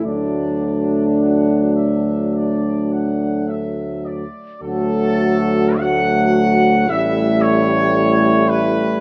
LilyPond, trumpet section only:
\new Staff \with { instrumentName = "Trumpet section" } { \time 4/4 \key d \major \tempo 4 = 53 d''4 fis''8 e''8 d''8 fis''8 e''8 d''8 | a'4 fis''4 e''8 cis''4 b'8 | }